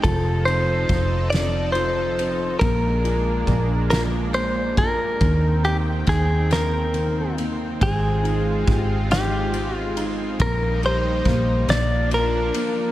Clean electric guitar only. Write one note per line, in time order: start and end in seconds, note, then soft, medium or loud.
0.03 0.43 A4 medium
0.45 1.28 C5 loud
1.30 1.71 D5 loud
1.72 2.59 C5 loud
2.59 3.89 A#4 medium
3.90 4.02 A#4 medium
4.34 4.78 C5 medium
4.78 5.64 A#4 medium
5.65 5.76 G4 medium
6.09 6.52 G#4 medium
6.53 7.35 A#4 medium
7.83 8.70 G#4 medium
8.70 9.11 G4 medium
9.12 9.77 G4 medium
9.77 10.04 F4 medium
10.42 10.80 A#4 loud
10.86 11.70 C5 loud
11.70 12.09 D5 loud
12.14 12.92 A#4 loud